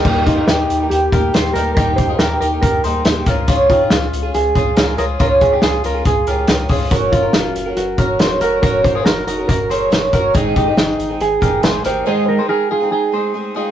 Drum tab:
CC |x-------|--------|--------|--------|
HH |-xxxxxxx|xxxxxxxx|xxxxxxxx|xxxxxxxo|
SD |--o---o-|--o---o-|--o---o-|--o---o-|
BD |oo---o--|oo--o--o|oo---o--|oo--o--o|

CC |--------|--------|--------|--------|
HH |xxxxxxxx|xxxxxxxx|xxxxxxxx|--------|
SD |--o---o-|--o---o-|--o---o-|--------|
BD |oo---o--|oo--o--o|oo---o--|--------|